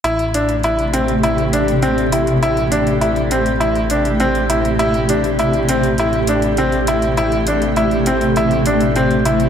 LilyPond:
<<
  \new Staff \with { instrumentName = "Upright piano" } { \time 4/4 \key a \minor \tempo 4 = 101 e'8 d'8 e'8 c'8 e'8 d'8 c'8 e'8 | e'8 d'8 e'8 c'8 e'8 d'8 c'8 e'8 | e'8 d'8 e'8 c'8 e'8 d'8 c'8 e'8 | e'8 d'8 e'8 c'8 e'8 d'8 c'8 e'8 | }
  \new Staff \with { instrumentName = "Ambient pad" } { \time 4/4 \key a \minor <c a g'>1~ | <c a g'>1~ | <c a g'>1~ | <c a g'>1 | }
  \new Staff \with { instrumentName = "Detuned saw bass" } { \clef bass \time 4/4 \key a \minor a,,1~ | a,,1~ | a,,1~ | a,,1 | }
  \new DrumStaff \with { instrumentName = "Drums" } \drummode { \time 4/4 hh16 hh16 hh16 hh16 hh16 hh16 hh16 hh16 hh16 hh16 hh16 hh16 hh16 hh16 hh16 hh16 | hh16 hh16 hh16 hh16 hh16 hh16 hh16 hh16 hh16 hh16 hh16 hh16 hh16 hh16 hh16 hh16 | hh16 hh16 hh16 hh16 hh16 hh16 hh16 hh16 hh16 hh16 hh16 hh16 hh16 hh16 hh16 hh16 | hh16 hh16 hh16 hh16 hh16 hh16 hh16 hh16 hh16 hh16 hh16 hh16 hh16 hh16 hh16 hh16 | }
>>